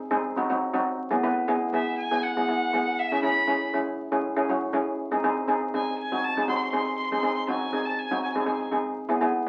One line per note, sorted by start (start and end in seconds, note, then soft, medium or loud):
0.11 0.27 C4 loud
0.11 0.26 D#4 medium
0.11 0.26 G#4 loud
0.37 0.44 C4 medium
0.37 0.45 D#4 medium
0.37 0.45 F#4 loud
0.50 0.65 C4 medium
0.50 0.66 D#4 medium
0.50 0.65 F#4 medium
0.74 0.97 C4 loud
0.74 0.97 D#4 medium
0.74 0.97 F#4 loud
1.11 1.19 B3 loud
1.11 1.19 E4 medium
1.11 1.19 G#4 loud
1.23 1.40 B3 loud
1.23 1.40 E4 medium
1.23 1.40 B4 loud
1.48 1.64 B3 loud
1.48 1.65 E4 medium
1.48 1.65 G#4 loud
1.73 1.96 B3 medium
1.73 1.97 E4 medium
1.73 1.97 G#4 medium
1.73 1.98 E5 medium
1.99 2.25 G#5 loud
2.11 2.26 B3 medium
2.11 2.26 E4 medium
2.11 2.26 G#4 medium
2.23 3.01 F#5 loud
2.37 2.44 B3 medium
2.37 2.44 E4 medium
2.37 2.44 G#4 medium
2.48 2.64 B3 medium
2.48 2.65 E4 medium
2.48 2.65 G#4 medium
2.73 2.97 B3 medium
2.73 2.96 E4 medium
2.73 2.97 G#4 medium
2.99 3.23 E5 loud
3.12 3.19 C#4 medium
3.12 3.19 E4 medium
3.12 3.19 G#4 medium
3.23 3.39 C#4 medium
3.23 3.39 E4 medium
3.23 3.39 G#4 medium
3.23 3.70 B5 loud
3.47 3.64 C#4 medium
3.47 3.64 E4 medium
3.47 3.64 G#4 medium
3.73 3.96 C#4 medium
3.73 3.97 E4 medium
3.73 3.96 G#4 medium
4.12 4.26 C#4 medium
4.12 4.27 E4 medium
4.12 4.26 G#4 loud
4.36 4.44 C#4 medium
4.36 4.44 E4 medium
4.36 4.44 G#4 loud
4.49 4.65 C#4 medium
4.49 4.65 E4 medium
4.49 4.65 F#4 medium
4.73 4.96 C#4 medium
4.73 4.96 E4 medium
4.73 4.96 G#4 loud
5.11 5.19 C4 medium
5.11 5.19 D#4 medium
5.11 5.19 G#4 loud
5.24 5.40 C4 loud
5.24 5.39 D#4 medium
5.24 5.40 G#4 loud
5.48 5.64 C4 medium
5.48 5.64 D#4 medium
5.48 5.64 G#4 loud
5.74 5.96 C4 medium
5.74 5.96 D#4 medium
5.74 5.97 G#4 medium
5.74 5.98 G#5 medium
5.99 6.26 G#5 loud
6.12 6.26 C4 medium
6.12 6.27 D#4 medium
6.12 6.26 F#4 medium
6.24 6.49 A5 loud
6.37 6.44 C4 medium
6.37 6.44 D#4 medium
6.37 6.44 G#4 medium
6.48 6.64 C4 medium
6.48 6.64 D#4 medium
6.48 6.64 F#4 medium
6.48 6.56 C6 loud
6.57 6.64 C6 medium
6.65 6.71 C6 medium
6.71 6.96 C4 medium
6.71 6.96 D#4 medium
6.71 6.96 G#4 medium
6.71 6.77 C6 medium
6.78 6.86 C6 medium
6.86 6.93 C6 medium
6.98 7.05 C6 loud
7.05 7.13 C6 medium
7.12 7.19 C4 medium
7.12 7.19 D#4 medium
7.12 7.19 G#4 medium
7.12 7.20 C6 loud
7.21 7.39 C4 medium
7.21 7.39 D#4 medium
7.21 7.39 G#4 medium
7.21 7.26 C6 medium
7.26 7.35 C6 medium
7.37 7.43 C6 medium
7.48 7.64 C4 medium
7.48 7.64 D#4 medium
7.48 7.64 F#4 medium
7.48 7.87 G#5 loud
7.73 7.96 C4 medium
7.73 7.96 D#4 medium
7.73 7.96 G#4 medium
7.85 8.00 A5 medium
7.99 8.23 G#5 loud
8.11 8.26 C4 medium
8.11 8.26 D#4 medium
8.11 8.26 F#4 medium
8.24 8.31 G#5 medium
8.32 8.43 C4 medium
8.32 8.43 D#4 medium
8.32 8.43 G#4 medium
8.32 8.39 G#5 medium
8.40 8.46 G#5 medium
8.46 8.63 C4 medium
8.46 8.63 D#4 medium
8.46 8.63 G#4 medium
8.46 8.54 G#5 medium
8.54 8.61 G#5 medium
8.62 8.68 G#5 medium
8.71 8.95 C4 medium
8.71 8.95 D#4 medium
8.71 8.95 G#4 medium
9.09 9.17 B3 medium
9.09 9.17 E4 medium
9.09 9.18 G#4 loud
9.21 9.38 B3 medium
9.21 9.38 E4 medium
9.21 9.38 G#4 loud